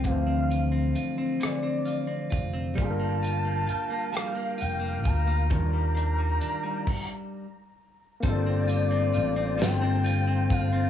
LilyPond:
<<
  \new Staff \with { instrumentName = "Soft synth lead" } { \time 6/8 \key g \minor \tempo 4. = 44 f''4 r8 d''4 r8 | a''4. f''8 g''8 bes''8 | bes''2~ bes''8 r8 | d''4. g''4 f''8 | }
  \new Staff \with { instrumentName = "Tonewheel organ" } { \time 6/8 \key g \minor r2. | <f' bes' f'' g''>2. | <ees d'' f''>4. r4. | <f' c'' g'' a''>2. | }
  \new Staff \with { instrumentName = "Tine electric piano" } { \time 6/8 \key g \minor <e f a c' d' c''>2. | <g bes d' f' aes' bes'>2. | <ees f g d' f' bes'>4. r4. | <bes c' d' f' a'>2. | }
  \new Staff \with { instrumentName = "Clean electric guitar" } { \time 6/8 \key g \minor <d c' f'>16 c'16 f'16 c'16 f'16 c'16 d16 c'16 f'16 c'16 f'16 c'16 | g16 bes16 f'16 bes16 f'16 bes16 g16 bes16 f'16 bes16 f'16 bes16 | ees16 g16 d'16 g16 d'16 g16 r4. | g16 c'16 f'16 c'16 f'16 c'16 g16 c'16 f'16 c'16 f'16 c'16 | }
  \new Staff \with { instrumentName = "Fingered electric bass" } { \clef bass \time 6/8 \key g \minor d,4 r4. f,,8 | g,,4 r4 f,,8 d,8 | ees,4 r2 | g,,4 a,,8 g,,4 g,,8 | }
  \new DrumStaff \with { instrumentName = "Drums" } \drummode { \time 6/8 <hh bd>8 hh8 hh8 <hh ss>8 hh8 <hh bd>8 | <hh bd>8 hh8 hh8 <hh ss>8 hh8 <hh bd>8 | <hh bd>8 hh8 hh8 <cymc bd>4. | <hh bd>8 hh8 hh8 <hh sn>8 hh8 <hh bd>8 | }
>>